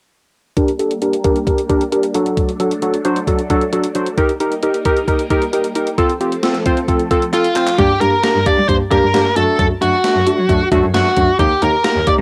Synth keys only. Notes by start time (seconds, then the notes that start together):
0.57 D4 G4 A#4
0.79 D4 G4 A4
1.02 D4 G4 A#4
1.24 D4 G4 A#4
1.47 D4 G4 A#4
1.70 D4 G4 A#4
1.92 D4 G4 A#4
2.15 F#3 D4 F#4 A4
2.60 F#3 D4 F#4 A4
2.82 F#3 D4 F#4 A4
3.05 F#3 D4 F#4 C5
3.27 F#3 D4 F#4 A4
3.50 F#3 D4 F#4 A4
3.73 F#3 D4 F#4 A4
3.95 F#3 D4 F#4 C5
4.18 D#4 G4 A#4
4.40 D#4 G4 A#4
4.63 D#4 G4 A#4
4.85 D#4 G4 A#4
5.08 D#4 G4 A#4
5.31 D#4 G4 A#4
5.53 D#4 G4 A#4
5.76 D#4 G4 A#4
5.98 C4 F4 A4
6.21 C4 F4 G4
6.43 C4 F4 A4
6.66 C4 F4 C5
6.88 C4 F4 A4
7.11 C4 F4 A4
7.33 C4 F4 A4
7.56 C4 F4 C5
7.79 A#3 D4 G4
8.01 A#3 D4 G4
8.24 A#3 D4 G4
8.46 A#3 D4 G4
8.69 A#3 D4 G4
8.91 A#3 D4 G4
9.14 A#3 D4 G4
9.36 A3 D4 F#4
9.82 A3 D4 F#4
10.04 A3 D4 F#4
10.27 A3 D4 F#4
10.49 A3 D4 F#4
10.72 A3 D4 F#4
10.94 A3 D4 F#4
11.17 A3 D4 F#4
11.39 A#3 D#4 G4
11.62 A#3 D#4 G4
11.85 A#3 D#4 G4
12.07 A#3 D#4 G4